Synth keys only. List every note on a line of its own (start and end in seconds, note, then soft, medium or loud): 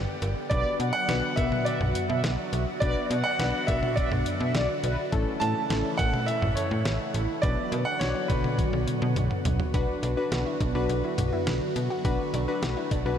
0.51 1.00 B3 medium
0.51 1.00 D4 medium
0.51 1.00 F#4 medium
0.51 1.00 B4 medium
1.09 2.07 B3 medium
1.09 2.07 D4 medium
1.09 2.07 F#4 medium
1.09 2.07 B4 medium
2.82 3.31 B3 medium
2.82 3.31 D4 medium
2.82 3.31 F#4 medium
2.82 3.31 B4 medium
3.39 4.37 B3 medium
3.39 4.37 D4 medium
3.39 4.37 F#4 medium
3.39 4.37 B4 medium
5.12 5.61 A3 medium
5.12 5.61 C#4 medium
5.12 5.61 E4 medium
5.12 5.61 A4 loud
5.70 6.68 A3 medium
5.70 6.68 C#4 medium
5.70 6.68 E4 medium
5.70 6.68 A4 medium
7.43 7.92 B3 medium
7.43 7.92 D4 medium
7.43 7.92 F#4 medium
7.43 7.92 B4 medium
8.01 8.99 B3 medium
8.01 8.99 D4 medium
8.01 8.99 F#4 medium
8.01 8.99 D5 medium
9.74 10.11 D4 medium
9.74 10.11 F#4 medium
9.74 10.11 B4 medium
10.17 10.66 D4 medium
10.17 10.66 F#4 medium
10.17 10.66 B4 medium
10.75 11.73 D4 medium
10.75 11.73 F#4 medium
10.75 11.73 B4 loud
12.05 12.42 D4 medium
12.05 12.42 F#4 medium
12.05 12.42 B4 loud
12.48 12.97 D4 medium
12.48 12.97 F#4 medium
12.48 12.97 B4 loud
13.06 13.18 D4 medium
13.06 13.18 F#4 medium
13.06 13.18 B4 loud